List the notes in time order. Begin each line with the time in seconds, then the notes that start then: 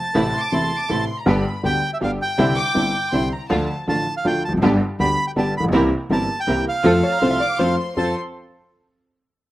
Already playing: A5
0.15 A1 A2 C3 E3 A3 C4 E4
0.33 C6
0.40 D6
0.52 E1 E2 C3 E3 A3 C4 E4 C6
0.78 D6
0.89 A1 A2 C3 E3 A3 C4 E4 C6
1.18 A#5
1.26 G1 G2 D3 G3 B3 D4 G4 B5
1.63 D2 D3 G3 B3 D4 G4 G5
1.94 E5
2.01 G1 G2 D3 G3 B3 D4 G4 F5
2.22 G5
2.38 C2 C3 D3 G3 C4 D4 E4
2.56 D6
2.74 G1 G2 D3 G3 C4 D4 E4
3.12 C2 C3 D3 G3 C4 D4 E4 C6
3.27 C6
3.32 A#5
3.50 D2 D3 F3 A3 D4 F4 A5
3.87 A1 A2 D3 F3 A3 D4 F4 A5
4.17 F5
4.25 D2 D3 F3 A3 D4 F4 G5
4.45 E1 A5
4.49 F1 E2
4.53 F2
4.57 F#1 F#2
4.62 G1 G2 D3 G3 B3 D4 G4
4.99 D2 D3 G3 B3 D4 G4 B5
5.27 G5
5.36 G1 G2 D3 G3 B3 D4 G4 A5
5.57 A1 B5
5.63 A#1
5.68 B1
5.73 C2 C3 E3 A#3 C4 E4 G4 A#4
6.10 G1 G2 E3 A#3 C4 E4 G4 A#4 A5
6.40 G5
6.47 C2 C3 E3 A#3 C4 E4 G4 A#4
6.69 F5
6.84 F2 F3 A3 C4 F4 A4
7.03 C#5 A5
7.12 A#5
7.21 C2 C3 F3 A3 C4 F4 A4 C5 C6
7.31 E5
7.40 D5 D6
7.59 F2 F3 A3 C4 F4 A4 C5 C6
7.96 F2 C4 F4 A4 C5 A5 C6